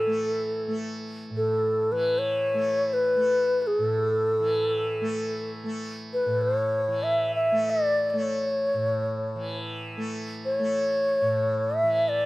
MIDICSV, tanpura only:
0, 0, Header, 1, 2, 480
1, 0, Start_track
1, 0, Tempo, 500000
1, 11767, End_track
2, 0, Start_track
2, 0, Title_t, "Tanpura"
2, 0, Program_c, 0, 104
2, 0, Note_on_c, 0, 45, 47
2, 0, Note_on_c, 0, 52, 45
2, 0, Note_on_c, 0, 57, 53
2, 63, Note_off_c, 0, 57, 0
2, 63, Note_on_c, 0, 57, 47
2, 650, Note_off_c, 0, 57, 0
2, 650, Note_on_c, 0, 57, 48
2, 1245, Note_off_c, 0, 45, 0
2, 1249, Note_on_c, 0, 45, 50
2, 1837, Note_off_c, 0, 52, 0
2, 1841, Note_on_c, 0, 52, 53
2, 2438, Note_off_c, 0, 57, 0
2, 2438, Note_on_c, 0, 57, 48
2, 3028, Note_off_c, 0, 57, 0
2, 3028, Note_on_c, 0, 57, 56
2, 3628, Note_off_c, 0, 45, 0
2, 3632, Note_on_c, 0, 45, 49
2, 4220, Note_off_c, 0, 52, 0
2, 4224, Note_on_c, 0, 52, 50
2, 4812, Note_off_c, 0, 57, 0
2, 4812, Note_on_c, 0, 57, 51
2, 5412, Note_off_c, 0, 57, 0
2, 5412, Note_on_c, 0, 57, 55
2, 6003, Note_off_c, 0, 45, 0
2, 6007, Note_on_c, 0, 45, 52
2, 6600, Note_off_c, 0, 52, 0
2, 6604, Note_on_c, 0, 52, 47
2, 7216, Note_off_c, 0, 57, 0
2, 7216, Note_on_c, 0, 57, 52
2, 7808, Note_off_c, 0, 57, 0
2, 7808, Note_on_c, 0, 57, 54
2, 8385, Note_off_c, 0, 45, 0
2, 8389, Note_on_c, 0, 45, 50
2, 8977, Note_off_c, 0, 52, 0
2, 8981, Note_on_c, 0, 52, 53
2, 9571, Note_off_c, 0, 57, 0
2, 9571, Note_on_c, 0, 57, 55
2, 10167, Note_off_c, 0, 57, 0
2, 10167, Note_on_c, 0, 57, 53
2, 10761, Note_off_c, 0, 45, 0
2, 10765, Note_on_c, 0, 45, 49
2, 11355, Note_off_c, 0, 52, 0
2, 11359, Note_on_c, 0, 52, 54
2, 11767, Note_off_c, 0, 45, 0
2, 11767, Note_off_c, 0, 52, 0
2, 11767, Note_off_c, 0, 57, 0
2, 11767, End_track
0, 0, End_of_file